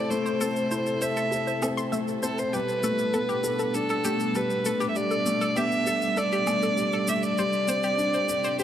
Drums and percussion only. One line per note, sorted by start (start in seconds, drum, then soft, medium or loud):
0.11 shaker soft
0.26 shaker soft
0.41 shaker medium
0.56 shaker soft
0.71 shaker soft
0.86 shaker soft
1.02 shaker medium
1.17 shaker soft
1.32 shaker soft
1.47 shaker soft
1.62 low woodblock soft
1.62 shaker medium
1.78 shaker soft
1.93 shaker soft
2.08 shaker soft
2.23 shaker medium
2.38 shaker soft
2.53 shaker soft
2.68 shaker soft
2.83 shaker medium
2.99 shaker soft
3.14 shaker soft
3.29 shaker soft
3.44 shaker medium
3.59 shaker soft
3.74 shaker soft
3.89 shaker soft
4.05 shaker medium
4.20 shaker soft
4.35 shaker soft
4.50 shaker soft
4.65 shaker medium
4.80 shaker soft
4.96 shaker soft
5.11 shaker soft
5.26 shaker medium
5.41 shaker soft
5.56 shaker soft
5.72 shaker soft
5.87 shaker medium
6.02 shaker soft
6.17 shaker soft
6.32 shaker soft
6.47 low woodblock soft
6.47 shaker medium
6.62 shaker soft
6.77 shaker soft
6.93 shaker soft
7.08 shaker medium
7.23 shaker soft
7.38 shaker soft
7.53 shaker soft
7.68 shaker medium
7.83 shaker soft
7.99 shaker soft
8.14 shaker soft
8.29 shaker medium
8.44 shaker soft
8.59 shaker soft